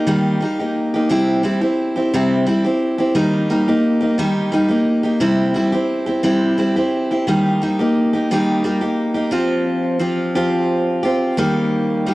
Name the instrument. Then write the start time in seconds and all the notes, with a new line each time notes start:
steel-string acoustic guitar
0.07 D#3 G3 A#3 D#4 G4
0.41 G3 A#3 D#4 G4
0.59 A#3 D#4 G4
0.94 A#3 D#4 G4
1.09 C3 G3 C4 E4 G4
1.43 G3 C4 E4 G4
1.61 C4 E4 G4
1.96 C4 E4 G4
2.14 C3 G3 C4 E4 G4
2.46 G3 C4 E4 G4
2.64 C4 E4 G4
2.98 C4 E4 G4
3.15 D#3 G3 A#3 D#4 G4
3.50 G3 A#3 D#4 G4
3.68 A#3 D#4 G4
4.01 A#3 D#4 G4
4.18 D#3 G3 A#3 D#4 G4
4.52 G3 A#3 D#4 G4
4.68 A#3 D#4 G4
5.03 A#3 D#4 G4
5.20 C3 G3 C4 E4 G4
5.54 G3 C4 E4 G4
5.72 C4 E4 G4
6.06 C4 E4 G4
6.23 C3 G3 C4 E4 G4
6.58 G3 C4 E4 G4
6.76 C4 E4 G4
7.11 C4 E4 G4
7.27 D#3 G3 A#3 D#4 G4
7.62 G3 A#3 D#4 G4
7.79 A#3 D#4 G4
8.13 A#3 D#4 G4
8.31 D#3 G3 A#3 D#4 G4
8.64 G3 A#3 D#4 G4
8.81 A#3 D#4 G4
9.14 A#3 D#4 G4
9.31 F3 C4 F4 G4
9.99 F3 C4 F4 G4
10.35 F3 C4 F4 G4
11.03 C4 F4 G4
11.37 D#3 G3 A#3 D#4 G4
12.06 G3 A#3 D#4 G4